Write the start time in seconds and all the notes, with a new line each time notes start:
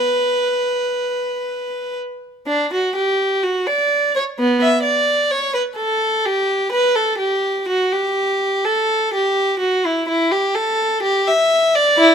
Already playing: B4
2.47 D4
2.73 F#4
2.95 G4
3.43 F#4
3.67 D5
4.16 C#5
4.39 B3
4.62 E5
4.83 D5
5.31 C#5
5.54 B4
5.77 A4
6.25 G4
6.72 B4
6.95 A4
7.18 G4
7.68 F#4
7.93 G4
8.65 A4
9.13 G4
9.59 F#4
9.86 E4
10.08 E4
10.32 G4
10.55 A4
11.03 G4
11.27 E5
11.75 D5
11.97 E4